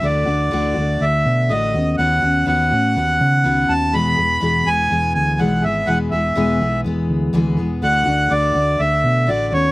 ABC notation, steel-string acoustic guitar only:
X:1
M:4/4
L:1/8
Q:1/4=124
K:Emix
V:1 name="Steel-string acoustic guitar"
[D,A,DF] [A,DF] [D,A,DF] [A,DF] [D,A,DF]2 [D,A,DF] [B,CF] | [^D,B,CF] [B,CF] [D,B,CF] [B,CF] [D,B,CF]2 [D,B,CF] [B,CF] | [E,,B,,E,G,B,G] [E,G,B,G] [E,,B,,E,G,B,G] [E,G,B,G] [E,G,B,G]2 [E,,B,,E,G,B,G] [E,G,B,G] | [E,,B,,E,G,B,G] [E,G,B,G] [E,,B,,E,G,B,G] [E,G,B,G] [E,G,B,G]2 [E,,B,,E,G,B,G] [E,G,B,G] |
[D,A,DF] [A,DF] [D,A,DF] [A,DF] [D,A,DF]2 [D,A,DF] [B,CF] |]